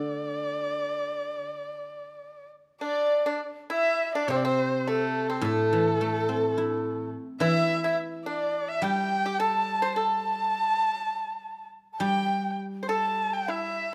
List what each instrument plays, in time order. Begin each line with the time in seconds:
Already playing: guzheng D3, erhu D5
2.81 pipa D4, erhu D5, dizi D5
3.26 pipa D4
3.70 pipa E4, dizi E5, erhu E5
4.15 pipa D4, erhu D5, dizi D5
4.28 guzheng C3, pipa C4, erhu C5, dizi C5
4.36 erhu D5
4.44 pipa C4, erhu C5, dizi C5
4.79 erhu C5
4.87 pipa A3, erhu A4, dizi A4
5.30 pipa C4
5.41 guzheng A2, pipa A3, erhu A4
5.46 dizi A4
5.73 guzheng E3
6.01 guzheng A3
6.29 guzheng C4
6.58 guzheng E4
7.40 guzheng E3, pipa E4, dizi E5, erhu E5
7.84 pipa E4, dizi E5
8.25 pipa D4, erhu D5, dizi D5
8.68 erhu E5, dizi E5
8.82 guzheng G3, pipa G4, erhu G5, dizi G5
9.26 pipa G4
9.39 pipa A4, erhu A5, dizi A5
9.82 pipa C5
9.96 pipa A4, erhu A5
10.00 dizi A5
10.84 pipa G#4
11.05 pipa G4
11.93 dizi A5
12.00 guzheng G3, pipa G4, dizi G5, erhu G5
12.83 pipa C5
12.89 pipa A4, dizi A5, erhu A5
13.30 erhu G5, dizi G5 A5
13.48 pipa E4, dizi E5, erhu E5